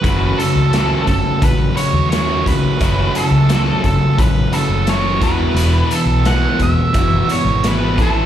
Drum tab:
HH |xxxxxxxx|xxxxxxxx|xxxxxxxx|
SD |--o---o-|--o---o-|--o---o-|
BD |o--oo--o|o--oo--o|---oo--o|